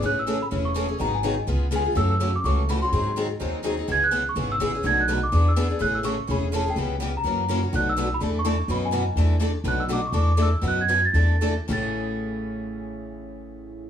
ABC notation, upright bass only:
X:1
M:4/4
L:1/8
Q:"Swing" 1/4=250
K:A
V:1 name="Upright bass" clef=bass
A,,,4 E,,,4 | G,,,4 C,,4 | F,,4 C,,4 | G,,4 ^D,,4 |
C,,4 G,,,2 A,,,2 | B,,,4 E,,4 | A,,,4 E,,,4 | C,,4 F,,4 |
B,,,4 E,,4 | F,,4 E,,4 | B,,,4 E,,4 | F,,4 E,,4 |
A,,,8- | A,,,8 |]